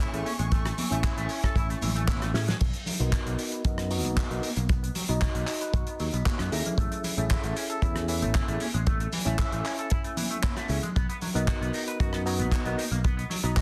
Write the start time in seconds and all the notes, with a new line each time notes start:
Already playing: A4 E5 G#5 C#6
0.00 E4, clap, closed hi-hat
0.13 A1 A3 C#4 E4 G#4 A4 E5, closed hi-hat, maracas
0.26 C#4, open hi-hat, high conga, maracas
0.39 A1 G#3, closed hi-hat, maracas
0.52 A3, kick, closed hi-hat, maracas
0.65 A3, cross-stick, closed hi-hat, maracas
0.78 E3, open hi-hat, high conga, low conga, maracas
0.90 A1 A3 C#4 E4 E5 G#5, closed hi-hat, maracas
1.04 E4, kick, clap, closed hi-hat, maracas
1.18 A1 A3, closed hi-hat, maracas
1.29 C#4, open hi-hat, maracas
1.44 A4, kick, cross-stick, closed hi-hat, maracas
1.56 A1 E4, kick, closed hi-hat, maracas
1.69 A3, closed hi-hat, maracas
1.81 A1 E3, open hi-hat, high conga, low conga, maracas
1.95 A3, closed hi-hat, maracas
2.08 E4, kick, clap, closed hi-hat, high conga, maracas
2.22 A3, cross-stick, closed hi-hat, maracas
2.34 A2 C#4 E4 G#4 A4 E5, snare, open hi-hat, maracas
2.48 G#3, snare, closed hi-hat, low conga, maracas
2.60 B1 B3, kick, closed hi-hat, crash, maracas
2.74 B3, closed hi-hat
2.86 F#3, open hi-hat, low conga, maracas
2.99 B1 B3 D#4 F#4 A#4 D#5, closed hi-hat, maracas
3.12 F#4, kick, clap, closed hi-hat
3.26 B1 B3, closed hi-hat
3.38 D#4, open hi-hat, maracas
3.52 B4, closed hi-hat, maracas
3.65 F#2 B3 D#4 F#4 A#4 D#5, kick, closed hi-hat, maracas
3.78 B3, cross-stick, closed hi-hat
3.90 F#3 B3 D#4 F#4 D#5 A#5, open hi-hat, maracas
4.04 B1 B3, closed hi-hat, high conga, maracas
4.17 F#4, kick, clap, closed hi-hat, maracas
4.30 B1 B3 D#4 F#4 A#4 D#5, closed hi-hat
4.43 D#4, open hi-hat, high conga, maracas
4.56 B1 A#3, closed hi-hat, maracas
4.69 B3, kick, closed hi-hat, maracas
4.83 B3, closed hi-hat
4.95 F#3, open hi-hat, low conga, maracas
5.09 B1 B3 D#4 F#4 D#5 A#5, closed hi-hat, maracas
5.21 F#4, kick, clap, closed hi-hat
5.35 B1 B3, closed hi-hat
5.47 D#4, clap, open hi-hat, maracas
5.61 B4, closed hi-hat, maracas
5.73 B1 F#4, kick, closed hi-hat, maracas
5.87 B3, closed hi-hat
5.99 D#2 F#3, open hi-hat, maracas
6.14 B1 B3, closed hi-hat, maracas
6.26 F#4, kick, clap, closed hi-hat, high conga, maracas
6.39 F#2 B3, cross-stick, closed hi-hat
6.51 D#2 C#4 D#4 E4 G#4 A4 E5, open hi-hat, maracas
6.65 A#3, closed hi-hat, low conga, maracas
6.78 A1 A3, kick, closed hi-hat, maracas
6.92 A3, closed hi-hat
7.04 E3, open hi-hat, low conga, maracas
7.17 A1 A3 C#4 E4 G#4 A4 E5, closed hi-hat, maracas
7.30 E4, kick, clap, closed hi-hat
7.44 A1 A3, closed hi-hat
7.56 C#4, open hi-hat, maracas
7.70 A4, closed hi-hat, maracas
7.82 E2 C#4 E4 G#4 A4 E5, kick, closed hi-hat, maracas
7.96 A3, cross-stick, closed hi-hat
8.08 E3 C#4 E4 A4 E5 G#5, open hi-hat, maracas
8.22 A1 A3, closed hi-hat, high conga, maracas
8.34 E4, kick, clap, closed hi-hat
8.48 A1 A3 C#4 E4 G#4 A4 E5, closed hi-hat
8.60 C#4, open hi-hat, high conga, maracas
8.74 A1 G#3, closed hi-hat, maracas
8.86 A3, kick, closed hi-hat, maracas
9.00 A3, closed hi-hat
9.12 E3, open hi-hat, low conga, maracas
9.25 A1 A3 C#4 E4 E5 G#5, closed hi-hat, maracas
9.39 E4, kick, clap, closed hi-hat, maracas
9.52 A1 A3, closed hi-hat
9.65 C#4, clap, open hi-hat, maracas
9.78 A4, closed hi-hat, maracas
9.90 E4, kick, closed hi-hat, maracas
10.04 A3, closed hi-hat
10.17 E3, open hi-hat, high conga, low conga, maracas
10.30 A3, closed hi-hat, maracas
10.43 E4, kick, clap, closed hi-hat, high conga, maracas
10.57 A3, cross-stick, closed hi-hat
10.69 C#2 C#4 E4 G#4 A4 E5, open hi-hat, maracas
10.83 G#3, closed hi-hat, low conga, maracas
10.96 B1 B3, kick, closed hi-hat, maracas
11.09 B3, closed hi-hat
11.21 F#3, open hi-hat, low conga, maracas
11.34 B1 B3 D#4 F#4 A#4 D#5, closed hi-hat, maracas
11.48 F#4, kick, clap, closed hi-hat
11.61 B1 B3, closed hi-hat
11.73 D#4, open hi-hat, maracas
11.87 B4, closed hi-hat, maracas
12.00 F#2 B3 D#4 F#4 A#4 D#5, kick, closed hi-hat, maracas
12.13 B3, cross-stick, closed hi-hat
12.26 F#3 B3 D#4 F#4 D#5 A#5, open hi-hat, maracas
12.39 B1 B3, closed hi-hat, high conga, maracas
12.52 F#4, kick, clap, closed hi-hat, maracas
12.65 B1 B3 D#4 F#4 A#4 D#5, closed hi-hat
12.78 D#4, open hi-hat, high conga, maracas
12.91 B1 A#3, closed hi-hat, maracas
13.04 B3, kick, closed hi-hat, maracas
13.17 B3, closed hi-hat
13.30 F#3, open hi-hat, low conga, maracas
13.43 B1 B3 D#4 F#4 D#5 A#5, closed hi-hat, maracas
13.56 F#4, kick, clap, closed hi-hat, maracas